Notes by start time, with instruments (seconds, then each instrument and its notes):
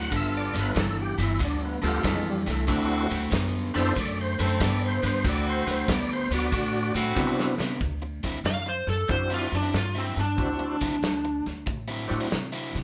Already playing: upright bass D2, tonewheel organ F#5
0.11 upright bass G1, overdriven electric guitar G2 D3, saxophone section B3 F4 A4, kick, ride
0.15 tonewheel organ E5
0.37 tonewheel organ D5
0.54 upright bass G1, overdriven electric guitar G2 D3, snare, ride
0.60 tonewheel organ B4
0.75 upright bass G1, overdriven electric guitar G2 E3, kick, snare, ride
0.79 tonewheel organ A4
1.02 tonewheel organ G4
1.18 upright bass G1, overdriven electric guitar G2 E3, snare, ride
1.22 tonewheel organ E4
1.39 upright bass D2, overdriven electric guitar G2 D3, kick, ride
1.45 tonewheel organ D4
1.65 tonewheel organ B3
1.82 upright bass D2, overdriven electric guitar G2 D3, tonewheel organ A3 B3 F4 G4, saxophone section B3 F4 A4, snare, ride
1.87 tonewheel organ A3
2.03 upright bass F2, overdriven electric guitar G2 E3, kick, snare, ride
2.08 tonewheel organ G#3
2.30 tonewheel organ G3
2.46 upright bass C2, overdriven electric guitar G2 E3, tonewheel organ A3, snare, ride
2.67 upright bass D2, overdriven electric guitar D3 A3, saxophone section C4 E4 F#4, tonewheel organ C4 D4 E4 F#4, kick, ride
3.10 upright bass D2, overdriven electric guitar D3 A3, snare, ride
3.31 upright bass F#2, overdriven electric guitar D3 B3, kick, snare, ride
3.74 upright bass F#2, overdriven electric guitar D3 B3, tonewheel organ C4 D4 E4 A4 B4, snare, ride
3.79 tonewheel organ C5
3.95 upright bass F#2, overdriven electric guitar D3 A3, tonewheel organ D5, kick, snare, ride
4.21 tonewheel organ C5
4.38 upright bass F#2, overdriven electric guitar D3 A3, saxophone section C4 E4 A4, tonewheel organ B4, snare, ride
4.42 tonewheel organ C5
4.60 upright bass G2, overdriven electric guitar D3 B3, tonewheel organ D5, kick, snare, ride
4.85 tonewheel organ C5
5.02 upright bass G2, overdriven electric guitar D3 B3, tonewheel organ B4, snare, ride
5.07 tonewheel organ C5
5.23 upright bass D2, overdriven electric guitar D3 A3, saxophone section C4 E4 F#4, kick, snare, ride
5.29 tonewheel organ D5
5.49 tonewheel organ C5
5.66 upright bass D2, overdriven electric guitar D3 A3, tonewheel organ B4, snare, ride
5.71 tonewheel organ C5
5.88 upright bass D2, overdriven electric guitar D3 B3, tonewheel organ D5, kick, snare, ride
6.13 tonewheel organ C5
6.30 upright bass D2, overdriven electric guitar D3 B3, tonewheel organ F#4 D5, snare, ride
6.52 upright bass A2, overdriven electric guitar D3 A3, kick, ride
6.94 upright bass A2, overdriven electric guitar D3 A3, saxophone section C4 E4 F#4, snare, ride
7.15 upright bass C3, overdriven electric guitar D3 B3, tonewheel organ C4 D4 E4 F#4, kick, snare
7.39 snare
7.58 upright bass C3, overdriven electric guitar D3 B3, snare
7.81 upright bass D2, kick, closed hi-hat
8.02 muted overdriven electric guitar stroke
8.23 upright bass D2, overdriven electric guitar D3 F#3 C4 E4, kick, snare, closed hi-hat
8.44 upright bass F#2, lead electric guitar F5, muted overdriven electric guitar stroke, snare, closed hi-hat
8.66 lead electric guitar C5, muted overdriven electric guitar stroke
8.87 upright bass F#2, lead electric guitar A4, snare, closed hi-hat
9.08 upright bass F#2, tonewheel organ C4 D4 E4 F#4, lead electric guitar C5, muted overdriven electric guitar stroke, kick, snare, closed hi-hat
9.30 overdriven electric guitar D3 F#3 C4 E4, lead electric guitar F4
9.52 upright bass F#2, lead electric guitar D4, snare, closed hi-hat
9.62 overdriven electric guitar D3 F#3 C4 E4
9.73 upright bass G2, lead electric guitar F4, snare, closed hi-hat
9.95 overdriven electric guitar D3 F#3 C4 E4, lead electric guitar C4
10.16 upright bass G2, lead electric guitar D4, snare, closed hi-hat
10.36 upright bass D2, tonewheel organ C4 D4 E4 F#4, kick, closed hi-hat
10.59 muted overdriven electric guitar stroke
10.81 upright bass D2, overdriven electric guitar D3 F#3 C4 E4, kick, snare, closed hi-hat
11.02 upright bass D2, muted overdriven electric guitar stroke, snare, closed hi-hat
11.25 muted overdriven electric guitar stroke
11.46 upright bass D2, snare, closed hi-hat
11.66 upright bass A2, muted overdriven electric guitar stroke, kick, closed hi-hat
11.88 overdriven electric guitar D3 F#3 C4 E4
12.08 upright bass A2, tonewheel organ C4 D4 E4 F#4, snare, closed hi-hat
12.20 overdriven electric guitar D3 F#3 C4 E4
12.31 upright bass C3, snare, closed hi-hat
12.52 overdriven electric guitar D3 F#3 C4 E4
12.75 upright bass C3, snare, closed hi-hat